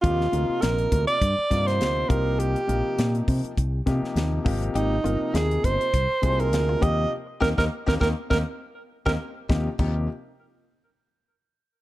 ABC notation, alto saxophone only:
X:1
M:4/4
L:1/16
Q:"Swing 16ths" 1/4=101
K:Eb
V:1 name="Alto saxophone"
F4 B3 d4 c3 B2 | G6 z8 z2 | E4 A2 c4- c B3 e2 | z2 B B z B B z B z4 B z2 |
z16 |]